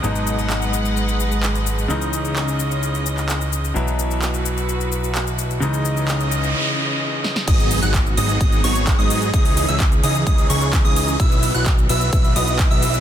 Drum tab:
CC |----------------|----------------|----------------|----------------|
HH |----------------|----------------|----------------|----------------|
SH |xxxxxxxxxxxxxxxx|xxxxxxxxxxxxxxxx|xxxxxxxxxxxxxxxx|xxxxxxxx--------|
CP |----x-------x---|----x------xx---|----x-------x---|----x-----------|
SD |----------------|----------------|----------------|--------------oo|
BD |----------------|----------------|----------------|----------------|

CC |x---------------|----------------|----------------|
HH |x-oxx-oxxxoxx-ox|xooxxxoxxxoxx-ox|x-oxx-oxxxoxx-ox|
SH |xxxxxxxxxxxxxxxx|xxxxxxxxxxxxxxxx|xxxxxxxxxxxxxxxx|
CP |----x-------x---|----x------xx---|----x-------x---|
SD |----------------|----------------|----------------|
BD |o---o---o---o---|o---o---o---o---|o---o---o---o---|